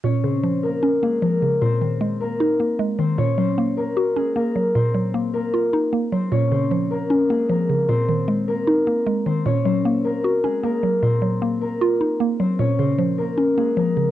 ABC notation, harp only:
X:1
M:4/4
L:1/8
Q:1/4=153
K:Bbm
V:1 name="Harp"
[Dd] [Cc] z [B,B] z [A,A] [B,B] z | [Cc]3 [B,B]4 [Cc] | [Dd] [Cc] z [B,B] z [A,A] [B,B] z | [Cc]3 [B,B]4 [Cc] |
[Dd] [Cc] z [B,B] z [A,A] [B,B] z | [Cc]3 [B,B]4 [Cc] | [Dd] [Cc] z [B,B] z [A,A] [B,B] z | [Cc]3 [B,B]4 [Cc] |
[Dd] [Cc] z [B,B] z [A,A] [B,B] z |]